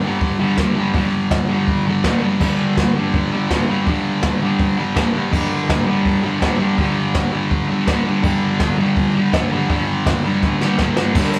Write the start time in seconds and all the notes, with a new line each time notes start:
Already playing: G2
0.04 D3 G3
0.21 kick, open hi-hat
0.40 D3 G3
0.57 G2 D3 G3, kick, snare
0.76 D3 G3
0.94 G2 D3, kick, open hi-hat
0.98 G3
1.31 kick, snare, open hi-hat
1.49 D3 G3
1.67 kick, open hi-hat
1.87 D3 G3
2.04 G2 D3 G3, kick, snare, open hi-hat
2.22 D3 G3
2.40 G2 D3 G3, kick, crash
2.77 kick, snare, open hi-hat
2.96 D3 G3
3.14 kick, open hi-hat
3.32 D3 G3
3.50 G2 D3 G3, kick, snare, open hi-hat
3.69 D3 G3
3.87 G2 D3 G3, kick, open hi-hat
4.22 kick, snare, open hi-hat
4.42 D3 G3
4.59 kick, open hi-hat
4.78 D3 G3
4.96 G2 D3 G3, kick, snare, open hi-hat
5.15 D3 G3
5.32 G2 D3 G3, kick, crash
5.69 kick, snare, open hi-hat
5.87 D3 G3
6.06 kick, open hi-hat
6.24 D3 G3
6.42 G2 D3 G3, kick, snare, open hi-hat
6.59 D3 G3
6.78 G2 D3 G3, kick, open hi-hat
7.15 kick, snare, open hi-hat
7.32 D3 G3
7.51 kick, open hi-hat
7.69 D3 G3
7.87 G2 D3 G3, kick, snare, open hi-hat
8.06 D3 G3
8.23 G2 D3 G3, kick, crash
8.60 kick, snare, open hi-hat
8.79 D3 G3
8.97 kick, open hi-hat
9.16 D3 G3
9.33 G2 D3 G3, kick, snare, open hi-hat
9.52 D3 G3
9.70 G2 D3 G3, kick, open hi-hat
10.06 kick, snare, open hi-hat
10.25 D3 G3
10.43 kick, snare
10.61 G3, snare
10.65 D3
10.78 G2 D3, kick, snare
10.83 G3
10.97 G3, snare
11.01 D3
11.15 G2 D3, kick, crash
11.19 G3
11.33 ride